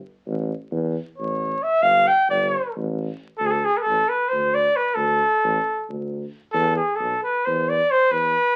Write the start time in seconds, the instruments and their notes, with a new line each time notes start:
0.26 tuba A1
0.71 tuba E2
1.18 tuba A1, cornet C#5
1.63 cornet E5
1.82 tuba G1, cornet F5
2.08 cornet G5
2.28 tuba G1, cornet D5
2.76 tuba A1
3.38 tuba D2, cornet A4
3.46 cornet G#4
3.51 cornet A4
3.65 cornet G#4
3.77 cornet B4
3.82 cornet A4
3.86 tuba A1
4.09 cornet B4
4.29 tuba D2, cornet C5
4.54 cornet D5
4.76 cornet B4
4.95 tuba D2, cornet A4
5.43 tuba A1
5.89 tuba D2
6.53 tuba E2, cornet A4
6.76 cornet G#4
6.96 tuba B1, cornet A4
7.24 cornet B4
7.45 tuba E2, cornet C5
7.69 cornet D5
7.91 cornet C5
8.10 tuba E2, cornet B4